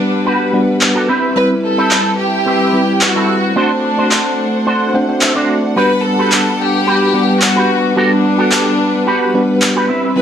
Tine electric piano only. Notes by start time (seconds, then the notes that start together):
Already playing: G3 B3 D4 B4 F#5
0.53 G3 B3 D4 B4 F#5
1.36 G3 C4 E4 B4
2.73 G3 C4 E4 B4
3.56 A3 C4 D4 F#4 C5
4.94 A3 C4 D4 F#4 C5
5.08 A3 C4 D4 F#4 C5
5.35 A3 C4 D4 F#4 D5
5.76 G3 B3 D4 B4 F#5
7.14 G3 B3 D4 B4 F#5
7.96 G3 B3 D4 B4 F#5
9.34 G3 B3 D4 B4 F#5
10.16 G3 C4 E4 B4